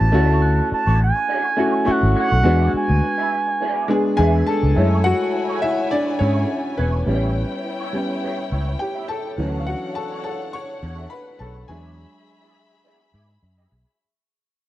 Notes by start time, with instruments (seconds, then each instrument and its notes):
Already playing: grand piano B3 C#4 E4 F#4 G4, analog synth lead A5
0.00 fingered electric bass A1, muted clean electric guitar stroke
0.12 fingered electric bass D2, grand piano A3 C#4 E4 F#4, clean electric guitar A3 D4 F#4 C#5
0.42 glockenspiel F#6
0.58 muted clean electric guitar stroke
0.71 analog synth lead A5, muted clean electric guitar stroke, muted fingered electric bass stroke
0.86 fingered electric bass A1, clean electric guitar A3 D4 F#4 C#5
1.00 analog synth lead G#5, muted clean electric guitar stroke
1.16 muted clean electric guitar stroke
1.28 clean electric guitar A3 D4 F#4 C#5
1.44 muted clean electric guitar stroke
1.57 grand piano A3 C#4 E4 F#4, clean electric guitar A3 D4 F#4 C#5
1.73 muted clean electric guitar stroke
1.85 grand piano A3 C#4 E4 F#4, glockenspiel C#6, muted clean electric guitar stroke, muted fingered electric bass stroke
1.91 analog synth lead F#5
2.02 fingered electric bass G#1, muted clean electric guitar stroke
2.15 clean electric guitar A3 D4 F#4 C#5
2.20 analog synth lead F#5
2.31 fingered electric bass B1, muted clean electric guitar stroke
2.43 fingered electric bass E2, grand piano G#3 B3 D4 F#4, clean electric guitar B3 E4 G#4 D5
2.74 analog synth lead G#5, muted fingered electric bass stroke
2.89 fingered electric bass D2, muted clean electric guitar stroke
3.02 muted clean electric guitar stroke
3.18 clean electric guitar B3 E4 G#4 E5
3.32 muted clean electric guitar stroke
3.47 muted clean electric guitar stroke
3.60 clean electric guitar B3 E4 G#4 D5
3.88 grand piano G#3 B3 D4 G#4, muted clean electric guitar stroke
4.05 muted clean electric guitar stroke
4.17 fingered electric bass E2, grand piano G#3 B3 D4 G#4 G#5, clean electric guitar B3 E4 G#4 E5
4.46 grand piano A4 A5, muted clean electric guitar stroke
4.62 fingered electric bass C#2, muted clean electric guitar stroke
4.75 fingered electric bass F#2, grand piano G#3 A3 E4, clean electric guitar A3 E4 G#4 C#5, violin section E4 C#5 G#5, glockenspiel E6
5.04 grand piano F#4 F#5
5.20 muted clean electric guitar stroke
5.33 muted clean electric guitar stroke
5.49 clean electric guitar A3 E4 G#4 C#5
5.62 grand piano E4 E5, muted clean electric guitar stroke
5.78 muted clean electric guitar stroke
5.91 grand piano D4 D5, muted clean electric guitar stroke
6.06 muted clean electric guitar stroke
6.19 fingered electric bass G#2, clean electric guitar A3 E4 G#4 C#5, grand piano C#4 C#5
6.35 clean electric guitar A3 E4 G#4 E5
6.49 muted clean electric guitar stroke
6.77 fingered electric bass E1, clean electric guitar A3 E4 G#4 C#5, grand piano B3 B4
6.93 muted clean electric guitar stroke
7.06 fingered electric bass A1, grand piano G3 B3 C#4, clean electric guitar B3 E4 G4 C#5, violin section E4 C#5 G5
7.51 muted clean electric guitar stroke
7.64 muted clean electric guitar stroke
7.80 clean electric guitar B3 E4 G4 C#5
7.93 grand piano G3 B3 C#4, muted clean electric guitar stroke
8.09 muted clean electric guitar stroke
8.22 clean electric guitar B3 E4 G4 C#5
8.37 muted clean electric guitar stroke
8.50 fingered electric bass C#2, clean electric guitar B3 E4 G4 C#5
8.66 muted clean electric guitar stroke
8.79 grand piano G4 G5, muted clean electric guitar stroke
8.95 clean electric guitar B3 E4 G4 E5
9.08 grand piano A4 A5, muted clean electric guitar stroke
9.24 muted clean electric guitar stroke
9.37 fingered electric bass D2, grand piano E3 F#3 C#4, clean electric guitar C4 F4 G#4 C5, violin section D4 C#5 F#5
9.48 clean electric guitar C#4 F#4 A4 C#5
9.60 grand piano F5
9.67 grand piano F#4 F#5
9.82 muted clean electric guitar stroke
9.95 grand piano A4 A5, glockenspiel C#6, muted clean electric guitar stroke
10.11 clean electric guitar C#4 F#4 A4 C#5
10.24 grand piano A4 A5, muted clean electric guitar stroke
10.40 muted clean electric guitar stroke
10.53 grand piano C#5 C#6, muted clean electric guitar stroke
10.69 muted clean electric guitar stroke
10.82 fingered electric bass E2, clean electric guitar C#4 F#4 A4 C#5
10.97 clean electric guitar C#4 F#4 A4 E5
11.10 grand piano B4 B5, muted clean electric guitar stroke
11.39 fingered electric bass B1, clean electric guitar C#4 F#4 A4 C#5, grand piano A4 A5
11.55 muted clean electric guitar stroke
11.68 fingered electric bass E2, grand piano F#3 G#3 D4 G#4 G#5, clean electric guitar B3 E4 G#4 D5, violin section G#4 E5 B5, glockenspiel C#6
12.13 muted clean electric guitar stroke
12.26 muted clean electric guitar stroke
12.41 clean electric guitar B3 E4 G#4 D5
12.55 muted clean electric guitar stroke
12.71 muted clean electric guitar stroke
12.84 clean electric guitar B3 E4 G#4 D5
12.99 muted clean electric guitar stroke
13.12 fingered electric bass G#2, clean electric guitar B3 E4 G#4 D5
13.28 muted clean electric guitar stroke
13.41 fingered electric bass F#2, muted clean electric guitar stroke
13.57 clean electric guitar B3 E4 G#4 E5
13.70 fingered electric bass B1, muted clean electric guitar stroke
13.86 muted clean electric guitar stroke